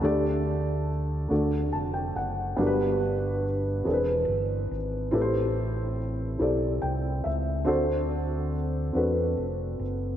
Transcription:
<<
  \new Staff \with { instrumentName = "Upright piano" } { \time 6/8 \key d \mixolydian \tempo 4. = 47 << { <e'' a''>16 r4. r16 a''16 g''16 fis''8 | r2. | r2 g''8 e''8 | r2. | } \\ { <a d' g' a' d''>4 r8 <a d' fis' a' d''>4 r8 | <b d' fis' g' bes' b'>4 r8 <c' d' e' gis' bes' b'>4 r8 | <c' e' g' a' b' c''>4 r8 <c' e' g' a' d''>4 r8 | <c' d' fis' a' c''>4 r8 <c' d' fis' a' b'>4 r8 | } >> }
  \new Staff \with { instrumentName = "Upright piano" } { \clef bass \time 6/8 \key d \mixolydian d4. d4. | g,4. e4. | a,4. r4. | d4. r4. | }
  \new Staff \with { instrumentName = "Fingered electric bass" } { \clef bass \time 6/8 \key d \mixolydian d,4. d,8 f,,8 fis,,8 | g,,4. e,,8 g,,8 gis,,8 | a,,4. b,,8 c,8 cis,8 | r4. e,8 f,,8 fis,,8 | }
>>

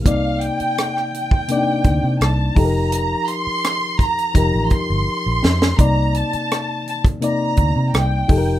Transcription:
<<
  \new Staff \with { instrumentName = "Violin section" } { \time 4/4 \key c \dorian \tempo 4 = 84 f''8 g''4 g''4. a''8 bes''8~ | bes''8 c'''4 bes''4 c'''4. | bes''8 a''4 a''8 bes''4 g''4 | }
  \new Staff \with { instrumentName = "Reed electric piano" } { \time 4/4 \key c \dorian <c bes ees' d''>4. r8 <c bes d' ees' d''>4. <f ees' g' a' bes'>8~ | <f ees' g' a' bes'>4 r4 <f ees' g' bes'>4. r8 | <c bes ees' d''>4. r8 <c bes ees' d''>4. <f ees' g' a' bes'>8 | }
  \new Staff \with { instrumentName = "Fingered electric bass" } { \clef bass \time 4/4 \key c \dorian c,8. r4. r16 d,16 c16 c,8 f,,8~ | f,,8 r4. f,,16 a,,16 r16 g,,16 r16 bes,,16 f,8 | c,8. r4. r16 d,16 c16 c,8 f,,8 | }
  \new DrumStaff \with { instrumentName = "Drums" } \drummode { \time 4/4 <hh bd>8 hh16 hh16 <hh ss>16 ss16 hh16 bd16 hh8 <hh bd>8 <hh ss>8 <hho bd>8 | hh8 hh8 <hh ss>8 <hh bd>16 hh16 <hh bd>8 <hh bd>8 r8 sn16 sn16 | <hh bd>8 hh16 hh16 <hh ss>8 hh16 <hh bd>16 hh8 <hh bd>8 <hh ss>8 <hho bd>8 | }
>>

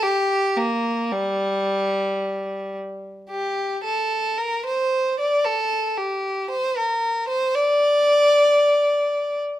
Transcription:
\new Staff \with { instrumentName = "Violin" } { \time 3/4 \key g \minor \tempo 4 = 57 g'8 bes8 g4. r8 | g'8 a'8 bes'16 c''8 d''16 a'8 g'8 | c''16 bes'8 c''16 d''4.~ d''16 r16 | }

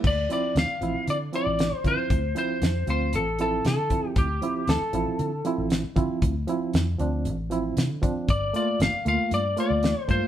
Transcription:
<<
  \new Staff \with { instrumentName = "Lead electric guitar" } { \time 4/4 \key d \minor \tempo 4 = 116 d''8 d''8 f''4 d''8 d''4 c''8~ | c''8 c''4 c''8 a'8 a'8 a'4 | g'4 a'2 r4 | r1 |
d''8 d''8 f''8 f''8 d''8 d''4 c''8 | }
  \new Staff \with { instrumentName = "Reed electric piano" } { \time 4/4 \key d \minor r8 <f c' e'>8 r8 <f c' e'>8 r8 <f c' e'>8 r8 <f c' e'>8 | r8 <f c' e'>8 r8 <f c' f'>8 r8 <f c' e'>8 r8 <f c' e'>8 | r8 <f c' e'>8 r8 <f c' e'>8 r8 <f c' e'>8 r8 <f c' e'>8 | r8 <f c' e'>8 r8 <f c' d'>8 r8 <f c' e'>8 r8 <f c' d'>8 |
r8 <a bes f'>8 r8 <a bes f'>8 r8 <a bes f'>8 r8 <a bes f'>8 | }
  \new Staff \with { instrumentName = "Fingered electric bass" } { \clef bass \time 4/4 \key d \minor d,8 r8 d,16 r16 a,,16 r16 d8 r16 a,,8 r16 d16 r16 | d,8 r8 f,8 d,8 a,,4 c16 d8 r16 | d,8 r8 d,16 r16 a,,16 r16 d8 r16 a,,8 r16 d16 r16 | d,8 r8 f,8 d,8 a,,4 c16 d8 r16 |
g,,8 r8 g,,16 r16 d,16 r16 g,8 r16 d,8 r16 g,16 r16 | }
  \new DrumStaff \with { instrumentName = "Drums" } \drummode { \time 4/4 <cymc bd>8 hh8 <hh sn>8 hh8 hh8 hh8 <hh sn>8 <hh bd>8 | <hh bd>8 hh8 <hh sn>8 hh8 hh8 hh8 <hh sn>8 <hh bd>8 | <hh bd>8 hh8 <hh sn>8 hh8 hh8 hh8 <hh sn>8 <hh bd>8 | <hh bd>8 hh8 <hh sn>8 hh8 hh8 hh8 <hh sn>8 <hh bd>8 |
<hh bd>8 hh8 <hh sn>8 hh8 hh8 hh8 <hh sn>8 <hh bd>8 | }
>>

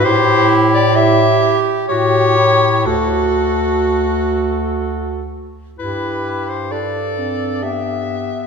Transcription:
<<
  \new Staff \with { instrumentName = "Soprano saxophone" } { \time 3/4 \key g \major \tempo 4 = 64 c''8. d''16 e''8. r16 cis''4 | a'2~ a'8 r8 | b'8. c''16 d''4 e''4 | }
  \new Staff \with { instrumentName = "Alto saxophone" } { \time 3/4 \key g \major g'4 g'4 g'4 | fis'2~ fis'8 r8 | g'4 a'4 g'4 | }
  \new Staff \with { instrumentName = "Clarinet" } { \time 3/4 \key g \major e'4. r8 fis'8 e'8 | fis'2~ fis'8 r8 | e'4 d'8 c'8 b4 | }
  \new Staff \with { instrumentName = "Bass clarinet" } { \clef bass \time 3/4 \key g \major a,2 a,4 | d,2~ d,8 r8 | g,2. | }
>>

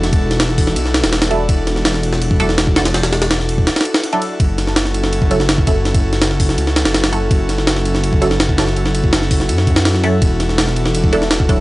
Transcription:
<<
  \new Staff \with { instrumentName = "Analog synth pad" } { \time 4/4 \key fis \minor \tempo 4 = 165 << { <d' a'>1~ | <d' a'>1~ | <d' a'>1 | <cis' a'>1~ |
<cis' a'>1~ | <cis' a'>1~ | <cis' a'>1 | <d' a'>1 | } \\ { <e' fis'>1~ | <e' fis'>1~ | <e' fis'>1 | <e' fis'>1~ |
<e' fis'>1~ | <e' fis'>1~ | <e' fis'>1~ | <e' fis'>1 | } >> }
  \new Staff \with { instrumentName = "Synth stab" } { \time 4/4 \key fis \minor r2. r8 <fis d' e' a'>8 | r2 r8 <fis d' e' a'>4 <fis d' e' a'>16 r16 | r2. r16 <fis d' e' a'>8. | r2 r8 <fis cis' e' a'>4 <fis cis' e' a'>16 r16 |
r2. r8 <fis cis' e' a'>8 | r2 r8 <fis cis' e' a'>4 <fis cis' e' a'>16 r16 | r2. r8 <fis cis' e' a'>8 | r2 r8 <fis d' e' a'>4 <fis d' e' a'>16 r16 | }
  \new Staff \with { instrumentName = "Detuned saw bass" } { \clef bass \time 4/4 \key fis \minor e,,2 b,,8. e,,4~ e,,16 | e,,1 | e,,2 r2 | fis,,1 |
fis,,2 cis,8. fis,,4~ fis,,16 | fis,,1 | fis,,2 fis,2 | e,,1 | }
  \new DrumStaff \with { instrumentName = "Drums" } \drummode { \time 4/4 <cymr sn>16 <bd cymr>8 <cymr sn>16 <cymr sn>16 sn16 <hho bd>16 sn16 cymr16 sn16 <cymr sn>16 <cymr sn>16 <cymr sn>16 <cymr sn>16 cymr8 | <bd cymr>8 <cymr sn>16 sn16 <cymr sn>16 sn16 cymr16 sn16 cymr16 bd16 cymr16 sn16 <cymr sn>16 bd16 <cymr sn>16 <cymr sn>16 | <cymr sn>16 <cymr sn>16 <cymr sn>16 <cymr sn>16 <cymr sn>16 sn16 cymr16 bd16 <cymr sn>16 <cymr sn>32 <cymr sn>32 cymr16 sn16 cymr16 cymr16 cymr8 | <bd cymr>8 <cymr sn>16 sn16 <cymr sn>16 sn16 cymr16 sn16 cymr16 bd16 cymr16 sn16 <cymr sn>16 bd16 <bd cymr>8 |
<cymr sn>16 <bd cymr>8 <cymr sn>16 <cymr sn>16 sn16 <hho bd>16 sn16 cymr16 sn16 <cymr sn>16 <cymr sn>16 <cymr sn>16 <cymr sn>16 cymr8 | <bd cymr>8 <cymr sn>16 sn16 <cymr sn>16 sn16 cymr16 sn16 cymr16 bd16 cymr16 sn16 <cymr sn>16 bd16 <cymr sn>16 sn16 | cymr16 sn16 cymr16 bd16 <cymr sn>16 sn16 <hho bd>16 sn16 cymr16 sn16 <bd cymr>16 sn16 <cymr sn>16 sn16 cymr8 | <bd cymr>8 <cymr sn>16 sn16 <cymr sn>16 sn16 cymr16 sn16 cymr16 bd16 cymr16 sn16 <cymr sn>16 bd16 <bd cymr>8 | }
>>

